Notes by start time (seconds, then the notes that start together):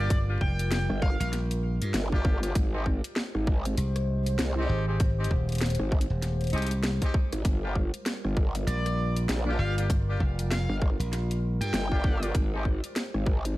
Already playing: G1 G3 A#3 D4 F4 G4 A#4
0.00 D5
0.10 kick, closed hi-hat
0.28 A#3 D4 F4 G4
0.41 F1 G5, kick
0.59 closed hi-hat
0.72 snare, closed hi-hat
0.90 G1, cross-stick
1.02 F5, kick
1.20 A#1 F5, closed hi-hat
1.33 snare, closed hi-hat
1.51 closed hi-hat
1.82 G2, closed hi-hat
1.94 G1, snare, closed hi-hat
2.12 A#3 D4 F4 G4, kick
2.18 cross-stick
2.25 kick
2.43 A#3 D4 F4 G4, cross-stick, closed hi-hat
2.55 G#1 G#3 G4 C5, kick, closed hi-hat
2.74 G#3 C4 D#4 G4
2.86 kick
3.04 closed hi-hat
3.16 snare
3.35 G#1, cross-stick
3.47 kick
3.65 closed hi-hat
3.77 C2, closed hi-hat
3.96 cross-stick, closed hi-hat
4.26 closed hi-hat
4.39 C2, snare, closed hi-hat
4.57 G#3 C4 D#4 G4
4.69 G#1
4.79 cross-stick
4.88 G#3 C4 D#4 G4
5.00 kick, closed hi-hat
5.18 G#3 C4 D#4 G4
5.24 closed hi-hat
5.31 D#1, kick
5.49 closed hi-hat
5.52 closed hi-hat
5.55 closed hi-hat
5.58 snare, closed hi-hat
5.61 closed hi-hat
5.66 closed hi-hat
5.70 closed hi-hat
5.75 closed hi-hat
5.79 G#1, cross-stick
5.92 kick
6.01 closed hi-hat
6.10 D#1
6.22 snare, closed hi-hat
6.41 closed hi-hat
6.44 closed hi-hat
6.47 closed hi-hat
6.50 C2, closed hi-hat
6.53 G#3 C4 D#4 G4, closed hi-hat
6.58 closed hi-hat
6.62 closed hi-hat
6.67 closed hi-hat
6.71 closed hi-hat
6.83 snare, closed hi-hat
7.02 G#3 C4 D#4 G4, kick, cross-stick, closed hi-hat
7.14 kick
7.32 G#1, cross-stick, closed hi-hat
7.44 G1 G3 F4 A#4, kick, closed hi-hat
7.63 A#3 D4 F4 G4
7.75 kick
7.94 closed hi-hat
8.06 snare, closed hi-hat
8.25 G1, cross-stick
8.37 kick
8.55 closed hi-hat
8.67 A#1 D5, closed hi-hat
8.86 cross-stick, closed hi-hat
9.16 closed hi-hat
9.29 A#1, snare, closed hi-hat
9.47 A#3 D4 F4 G4
9.59 G1 F5, cross-stick
9.78 A#3 D4 F4 G4, closed hi-hat
9.90 kick, closed hi-hat
10.08 A#3 D4 F4 G4
10.20 F1, kick
10.39 closed hi-hat
10.50 F5, snare, closed hi-hat
10.69 G1
10.82 kick
11.00 A#1, closed hi-hat
11.13 snare, closed hi-hat
11.31 closed hi-hat
11.61 G2 G5, closed hi-hat
11.73 G1, snare, closed hi-hat
11.92 A#3 D4 F4 G4, kick, cross-stick
12.04 kick
12.22 A#3 D4 F4 G4, cross-stick, closed hi-hat
12.34 G#1 G#3 G4 C5, kick, closed hi-hat
12.53 G#3 C4 D#4 G4
12.65 kick
12.84 closed hi-hat
12.96 snare, closed hi-hat
13.14 G#1, cross-stick
13.26 kick
13.45 closed hi-hat